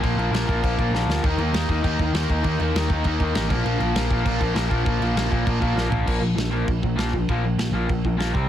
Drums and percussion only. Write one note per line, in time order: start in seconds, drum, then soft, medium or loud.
0.04 kick loud
0.04 crash medium
0.19 crash medium
0.34 snare loud
0.34 crash medium
0.49 kick medium
0.49 crash medium
0.64 kick loud
0.64 crash medium
0.79 kick medium
0.79 crash medium
0.95 snare medium
1.10 snare medium
1.24 kick loud
1.24 crash medium
1.38 crash medium
1.54 snare loud
1.54 crash loud
1.69 kick medium
1.69 crash medium
1.84 kick loud
1.84 crash loud
1.99 kick medium
1.99 crash medium
2.14 snare loud
2.14 crash medium
2.29 kick medium
2.29 crash medium
2.44 kick medium
2.44 crash medium
2.60 crash medium
2.76 snare loud
2.76 crash medium
2.90 kick medium
2.90 crash medium
3.04 kick medium
3.04 crash medium
3.20 kick loud
3.20 crash medium
3.35 snare loud
3.35 crash medium
3.50 kick loud
3.50 crash loud
3.66 crash medium
3.80 crash medium
3.96 snare loud
3.96 crash medium
4.11 kick medium
4.11 crash medium
4.26 kick loud
4.26 crash loud
4.41 kick loud
4.41 crash medium
4.56 snare loud
4.56 crash medium
4.71 kick medium
4.71 crash medium
4.86 kick loud
4.86 crash medium
5.02 crash medium
5.17 snare loud
5.17 crash loud
5.32 kick medium
5.32 crash medium
5.47 kick loud
5.47 crash loud
5.62 kick medium
5.62 crash medium
5.78 snare medium
5.92 floor tom loud
6.07 kick loud
6.07 crash loud
6.07 crash medium
6.38 snare loud
6.38 crash medium
6.68 kick loud
6.68 crash medium
6.83 kick medium
6.98 snare loud
6.98 crash medium
7.13 kick medium
7.29 kick loud
7.29 crash medium
7.59 snare loud
7.59 crash medium
7.89 kick loud
7.89 crash medium
8.05 kick medium
8.20 snare loud
8.20 crash medium
8.35 kick medium